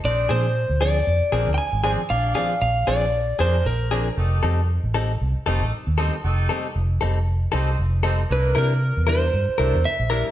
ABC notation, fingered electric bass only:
X:1
M:4/4
L:1/16
Q:"Swing 16ths" 1/4=116
K:Fmix
V:1 name="Fingered electric bass" clef=bass
B,,,2 B,,3 D,,3 F,, z B,,, D,, z _A,,,2 z | B,,,2 z2 B,,,2 B,,,4 F,,2 B,,,4 | F,,,2 F,,3 A,,,3 C,, z F,,, A,,, z E,,2 z | F,,,2 z2 F,,,2 F,,,4 C,,2 F,,,4 |
C,,2 C,3 =E,,3 G,, z C,, E,, z B,,,2 z |]